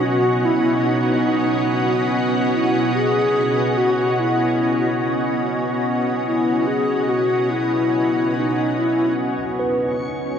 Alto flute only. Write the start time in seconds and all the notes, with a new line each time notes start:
0.04 F#4
0.45 E4
0.85 D#4
2.53 E4
2.94 G#4
3.77 F#4
4.20 E4
6.27 E4
6.67 G#4
7.09 F#4
7.50 E4
8.37 D#4
8.78 E4
9.19 F#4
10.02 D#4